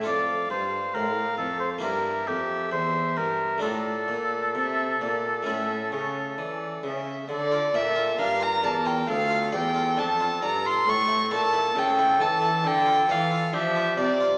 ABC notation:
X:1
M:4/4
L:1/16
Q:1/4=67
K:Dm
V:1 name="Violin"
f4 f4 e8 | d4 e2 d2 e2 ^c2 d2 e2 | d2 e2 f b a g f2 g2 a2 b c' | ^c'2 a2 g2 a2 g2 f2 e2 d2 |]
V:2 name="Oboe"
d2 c2 B2 A c B2 G2 c2 B2 | A12- A2 z2 | A4 B4 A8 | A8 A4 G2 z2 |]
V:3 name="Harpsichord"
[A,FA]8 [B,EG]8 | [A,DF]8 [A,^CE]8 | z F d F D F d F A, F d F D F d F | z E A E A, E A E z F d F D F d F |]
V:4 name="Harpsichord" clef=bass
F,,2 G,,2 A,,2 F,,2 G,,2 F,,2 E,,2 G,,2 | A,,2 B,,2 C,2 B,,2 A,,2 ^C,2 E,2 C,2 | D,2 B,,2 G,,2 E,,2 D,,2 E,,2 F,,2 G,,2 | A,,2 B,,2 ^C,2 E,2 D,2 E,2 F,2 =C,2 |]
V:5 name="Cello" clef=bass
F,,2 G,,2 A,,2 F,,2 G,,2 F,,2 E,,2 G,,2 | A,,2 B,,2 C,2 B,,2 A,,2 ^C,2 E,2 C,2 | D,2 B,,2 G,,2 E,,2 D,,2 E,,2 F,,2 G,,2 | A,,2 B,,2 ^C,2 E,2 D,2 E,2 F,2 =C,2 |]